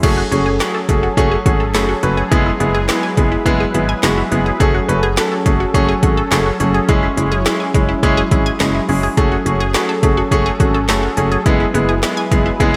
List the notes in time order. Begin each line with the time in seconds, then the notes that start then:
0.03 F#1 F#3 A3 C#4 F#4 G#4 A4, kick, closed hi-hat, crash
0.17 F#4
0.32 F#1 A3 C#4 F#4 G#4, closed hi-hat
0.46 G#4
0.60 A3 C#4 F#4 G#4, snare, clap, closed hi-hat
0.74 A4
0.89 F#1 A3 C#4 F#4 G#4, kick, closed hi-hat
1.03 F#4
1.17 F#1 A3 C#4 F#4 G#4, kick, closed hi-hat
1.32 G#4
1.46 G#1 A3 C#4 F#4 G#4, kick, closed hi-hat
1.60 A4
1.74 F#1 A3 C#4 F#4 G#4, snare, clap, closed hi-hat
1.89 F#4
2.03 F#1 A3 C#4 F#4 B4, closed hi-hat
2.17 G#4
2.31 F#1 G#3 B3 E4 G#4 B4, kick, closed hi-hat
2.46 E4
2.60 F#1 G#3 B3 E4 G#4, closed hi-hat
2.75 G#4
2.89 G#3 B3 E4 G#4, snare, clap, closed hi-hat
3.03 G#5
3.17 F#1 G#3 B3 E4 G#4, kick, closed hi-hat
3.32 E4
3.46 F#1 G#3 B3 E4 G#4, kick, closed hi-hat
3.60 G#4
3.74 G#1 G#3 B3 E4 G#4, closed hi-hat
3.89 G#5
4.03 F#1 G#3 B3 E4 F#4, snare, clap, closed hi-hat
4.18 E4
4.32 F#1 G#3 B3 E4 G#4, closed hi-hat
4.46 G#4
4.60 F#1 A3 C#4 F#4 G#4 A4, kick, closed hi-hat
4.75 F#4
4.88 F#1 A3 C#4 F#4 B4, closed hi-hat
5.03 G#4
5.17 A3 C#4 F#4 A4, snare, clap, closed hi-hat
5.32 A4
5.46 F#1 A3 C#4 F#4 G#4, kick, closed hi-hat
5.60 F#4
5.74 F#1 A3 C#4 F#4 G#4, kick, closed hi-hat
5.89 G#4
6.03 G#1 A3 C#4 F#4 G#4, kick, closed hi-hat
6.17 A4
6.31 F#1 A3 C#4 F#4 G#4, snare, clap, closed hi-hat
6.46 F#4
6.60 F#1 A3 C#4 F#4 G#4, closed hi-hat
6.74 G#4
6.89 F#1 G#3 C#4 E4 G#4, kick, closed hi-hat
7.03 E4
7.17 F#1 G#3 C#4 E4 G#4, closed hi-hat
7.32 G#4
7.46 G#3 C#4 E4 G#4, snare, clap, closed hi-hat
7.60 G#5
7.74 F#1 G#3 C#4 E4 G#4, kick, closed hi-hat
7.89 E4
8.03 F#1 G#3 C#4 E4 G#4, kick, closed hi-hat
8.17 G#4
8.31 G#1 G#3 C#4 E4 G#4, kick, closed hi-hat
8.46 G#5
8.60 F#1 G#3 C#4 E4 G#4, snare, clap, closed hi-hat
8.75 E4
8.89 F#1 G#3 C#4 E4 G#4, open hi-hat
9.03 G#4
9.17 F#1 A3 C#4 F#4 G#4 A4, kick, closed hi-hat
9.32 F#4
9.46 F#1 A3 C#4 F#4 G#4, closed hi-hat
9.60 G#4
9.74 A3 C#4 F#4 G#4, snare, clap, closed hi-hat
9.89 A4
10.03 F#1 A3 C#4 F#4 G#4, kick, closed hi-hat
10.17 F#4
10.31 F#1 A3 C#4 F#4 G#4, kick, closed hi-hat
10.46 G#4
10.60 G#1 A3 C#4 F#4 G#4, kick, closed hi-hat
10.74 A4
10.89 F#1 A3 C#4 F#4 A4, snare, clap, closed hi-hat
11.03 F#4
11.17 F#1 A3 C#4 F#4 G#4, closed hi-hat
11.32 G#4
11.46 F#1 F#3 G#3 B3 E4 G#4 B4, kick, closed hi-hat
11.60 E4
11.74 F#1 G#3 B3 E4 G#4, closed hi-hat
11.89 G#4
12.03 G#3 B3 E4 G#4, snare, clap, closed hi-hat
12.17 G#5
12.31 F#1 G#3 B3 E4 G#4, kick, closed hi-hat
12.46 E4
12.60 F#1 G#3 B3 E4 G#4, kick, closed hi-hat